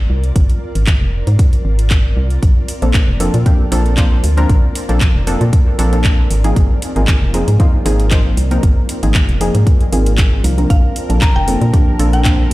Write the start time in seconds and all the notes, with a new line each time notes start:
Already playing: C4 F4 A#4 D5
0.10 C2
0.24 closed hi-hat
0.36 G#1, kick, closed hi-hat
0.49 closed hi-hat
0.75 G#1, closed hi-hat
0.87 G#1, kick, clap, closed hi-hat
1.01 F1
1.27 G#2, closed hi-hat
1.39 kick, closed hi-hat
1.53 closed hi-hat
1.65 G#1
1.79 closed hi-hat
1.90 kick, clap, closed hi-hat
2.17 C2
2.30 closed hi-hat
2.43 A#1, kick, closed hi-hat
2.68 open hi-hat
2.82 A#1 F3 A#3 C4 D4 A4, closed hi-hat
2.94 A#1, kick, clap, closed hi-hat
3.08 F1
3.20 F3 A#3 C4 D4 A4, open hi-hat
3.34 A#2, closed hi-hat
3.46 F3 A#3 C4 D4 G4, kick, closed hi-hat
3.72 A#1 F3 A#3 C4 D4 A4, open hi-hat
3.86 closed hi-hat
3.97 F3 A#3 C4 D4 C5, kick, clap, closed hi-hat
4.24 D2, open hi-hat
4.37 F3 A#3 C4 D4 A#4, closed hi-hat
4.49 A#1, kick, closed hi-hat
4.75 open hi-hat
4.89 A#1 F3 A#3 C4 D4 A4, closed hi-hat
5.01 A#1, kick, clap, closed hi-hat
5.15 F1
5.27 F3 A#3 C4 D4 A4, open hi-hat
5.41 A#2, closed hi-hat
5.53 kick, closed hi-hat
5.79 A#1 F3 A#3 C4 D4 A4, open hi-hat
5.92 F3 A#3 C4 D4 A4, closed hi-hat
6.04 kick, clap, closed hi-hat
6.31 G#1, open hi-hat
6.44 F3 A#3 C4 D#4 G#4, closed hi-hat
6.56 G#1, kick, closed hi-hat
6.82 open hi-hat
6.96 G#1 F3 A#3 C4 D#4 G#4, closed hi-hat
7.08 G#1, kick, clap, closed hi-hat
7.22 F1
7.34 F3 A#3 C4 D#4 G#4, open hi-hat
7.48 G#2, closed hi-hat
7.60 F3 A#3 C4 D#4 F4, kick, closed hi-hat
7.85 G#1 F3 A#3 C4 D#4 G#4, open hi-hat
8.00 closed hi-hat
8.11 F3 A#3 C4 D#4 C5, kick, clap, closed hi-hat
8.37 C2, open hi-hat
8.51 F3 A#3 C4 D#4 A#4, closed hi-hat
8.63 G#1, kick, closed hi-hat
8.89 open hi-hat
9.03 G#1 F3 A#3 C4 D#4 G#4, closed hi-hat
9.14 G#1, kick, clap, closed hi-hat
9.29 F1, closed hi-hat
9.41 F3 A#3 C4 D#4 G#4, open hi-hat
9.55 G#2, closed hi-hat
9.67 kick, closed hi-hat
9.81 closed hi-hat
9.92 G#1 F3 A#3 C4 D#4 G#4, open hi-hat
10.06 closed hi-hat
10.18 kick, clap, closed hi-hat
10.44 C2 F3 A#3 C4 D#4 A#4, open hi-hat
10.58 F3 A#3 C4 D4 A#4, closed hi-hat
10.70 A#1 A#3 D4 A#4 C5 F5 A5, kick, closed hi-hat
10.96 open hi-hat
11.09 A#1 F3 A#3 C4 D4 A4, closed hi-hat
11.21 A#1 A#5, kick, clap, closed hi-hat
11.35 F1 G5
11.48 F3 A#3 C4 D4 A4, open hi-hat
11.61 A#2, closed hi-hat
11.73 F3 A#3 C4 D4 G4, kick, closed hi-hat
11.99 A#1 F3 A#3 C4 D4 A4, open hi-hat
12.13 G5, closed hi-hat
12.25 F3 A#3 C4 D4 C5, kick, clap, closed hi-hat